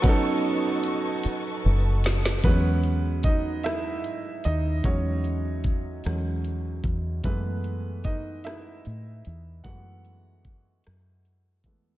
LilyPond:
<<
  \new Staff \with { instrumentName = "String section" } { \time 6/8 \key e \major \tempo 4. = 50 <b' dis'' a'' cis'''>2. | r2. | r2. | r2. |
r2. | }
  \new Staff \with { instrumentName = "Grand piano" } { \time 6/8 \key e \major <fis b cis' dis' a'>2. | <b b'>4 <dis' dis''>8 <e' e''>4 <dis' dis''>8 | cis''4 r2 | b'4 <dis' dis''>8 <e' e''>4. |
<fis' fis''>2~ <fis' fis''>8 r8 | }
  \new Staff \with { instrumentName = "Grand piano" } { \clef bass \time 6/8 \key e \major r2. | <fis gis cis'>8 r2 r8 | <fis gis cis'>4. <fis gis cis'>8 r4 | <e gis a b>8 r2 r8 |
<e gis a b>4. r4 <e gis a b>8 | }
  \new Staff \with { instrumentName = "Fingered electric bass" } { \clef bass \time 6/8 \key e \major b,,4 gis,,8 r8 fis,,4 | e,2 gis,8 dis,8 | e,4. e,4 e,8 | fis,2 a,8 e,8 |
fis,4. fis,4 e,8 | }
  \new DrumStaff \with { instrumentName = "Drums" } \drummode { \time 6/8 <hh bd>4 hh8 hh4 <hh sn>16 sn16 | <hh bd>8 hh8 <hh bd>8 <hh ss>8 hh8 hh8 | <hh bd>8 hh8 <hh bd>8 <hh ss>8 hh8 <hh bd>8 | <hh bd>8 hh8 <hh bd>8 <hh ss>8 hh8 hh8 |
<hh bd>8 hh8 <hh bd>8 <hh ss>8 hh8 <hh bd>8 | }
>>